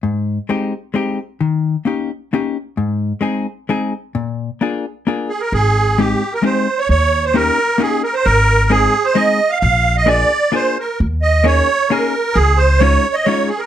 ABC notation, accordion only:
X:1
M:3/4
L:1/16
Q:1/4=131
K:Ab
V:1 name="Accordion"
z12 | z12 | z12 | z8 z2 A B |
A4 G3 B c3 d | d3 c B4 A2 B c | B4 A3 c e3 f | f3 e =d4 c2 B2 |
z2 e2 d4 B4 | A2 c2 d3 e d2 A B |]